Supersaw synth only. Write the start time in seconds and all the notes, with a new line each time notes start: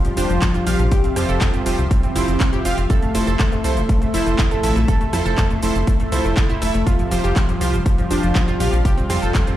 0.17 F3 F4 G4 C5
0.67 F3 F4 G4 F5
1.16 F3 F4 G4 C5
1.66 F3 F4 G4 C5
2.16 F3 F4 G4 C5
2.65 F4 G4 F5
3.15 F3 E4 A4 C5
3.64 F3 E4 A4 C5
4.14 F3 E4 A4 C5
4.63 F3 E4 A4 E5
5.13 F3 E4 A4 C5
5.63 F3 E4 A4 C5
6.12 F3 E4 A4 C5
6.62 E4 A4 E5
7.11 F3 F4 G4 C5
7.61 F3 F4 G4 C5
8.11 F3 F4 G4 C5
8.60 F3 F4 G4 F5
9.10 F3 F4 G4 C5